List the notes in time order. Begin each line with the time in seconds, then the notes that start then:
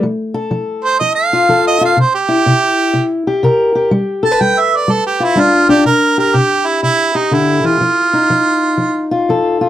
0.03 F3
0.34 A4
0.51 F3
0.84 C5
0.99 F3 D#5
1.15 F5
1.33 F4
1.49 F3 A4
1.67 D#5
1.81 F4 F5
1.97 C3 C5
2.15 G4
2.29 E4
2.46 C3
2.93 C3
3.27 G4
3.43 C3 A#4
3.75 G4
3.91 G3
4.23 A4 A5
4.31 B4
4.41 G3 G5
4.60 E5
4.76 D5
4.88 G3 A4
5.07 G4
5.20 F4
5.24 E4
5.35 G3 D4
5.40 F4
5.69 D4 G4
5.85 C3 A#4
6.18 G4 A#4
6.34 C3 G4
6.66 E4
6.83 C3 E4
7.15 D#4 G4
7.31 D3 E4
7.64 E3 F4
7.81 F3
8.13 D#4
8.30 F3
8.78 F3
9.11 F4
9.29 F3 A4
9.61 F4